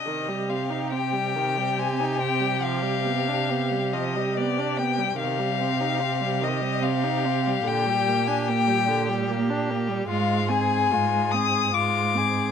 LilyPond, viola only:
\new Staff \with { instrumentName = "Viola" } { \time 3/4 \key c \minor \tempo 4 = 72 ees16 g16 c'16 ees'16 c'16 g16 ees16 g16 c'16 ees'16 c'16 g16 | f16 g16 b16 d'16 b16 g16 f16 g16 b16 d'16 b16 g16 | ees16 g16 c'16 ees'16 c'16 g16 ees16 g16 c'16 ees'16 c'16 g16 | d16 g16 bes16 d'16 bes16 g16 d16 g16 bes16 d'16 bes16 g16 |
aes8 c'8 aes8 c'8 aes8 c'8 | }